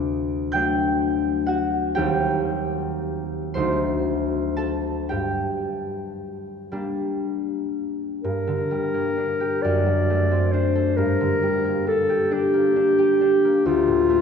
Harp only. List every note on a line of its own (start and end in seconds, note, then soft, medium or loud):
0.00 2.01 D2 medium
0.00 0.54 A3 soft
0.00 2.00 D5 medium
0.00 2.00 D6 medium
0.52 2.01 F#3 soft
0.52 2.01 A3 soft
0.52 2.01 D4 soft
0.52 1.94 G5 medium
0.52 2.16 G6 loud
1.46 2.00 F#4 soft
1.46 2.00 F#5 medium
1.95 3.60 D#2 soft
1.95 3.60 G3 soft
1.95 5.16 C4 soft
1.95 3.60 G4 medium
1.95 3.59 G5 medium
3.54 5.16 D2 medium
3.54 5.15 F#3 soft
3.54 5.16 A3 soft
3.54 5.16 D#4 soft
3.54 5.15 C5 medium
3.54 5.14 C6 medium
4.57 5.15 A4 soft
4.57 5.14 A5 medium
5.09 8.23 G2 soft
5.09 9.00 G4 soft
5.09 8.99 G5 medium
6.72 8.70 G3 soft
6.72 8.93 A#3 soft
6.72 9.16 D4 soft
8.24 9.66 G2 soft
8.47 9.66 D3 soft
8.71 9.66 G3 soft
8.94 9.66 A#3 soft
9.17 10.52 D4 soft
9.40 9.66 G4 soft
9.64 11.01 F#2 soft
9.86 11.01 F#3 soft
10.10 11.01 A3 soft
10.31 11.01 C4 soft
10.53 11.86 D4 soft
10.75 11.01 A4 soft
10.98 13.70 G2 soft
11.20 13.70 D3 soft
11.43 13.70 G3 soft
11.64 12.52 A#3 soft
11.87 12.30 D4 soft
12.09 12.97 G4 soft
12.31 12.75 D4 soft
12.54 13.43 A#3 soft
12.76 13.20 D4 soft
12.98 13.69 G4 soft
13.21 14.21 D4 soft
13.44 13.70 A#3 soft
13.66 14.21 D2 soft
13.87 14.21 A2 soft
14.10 14.21 A3 soft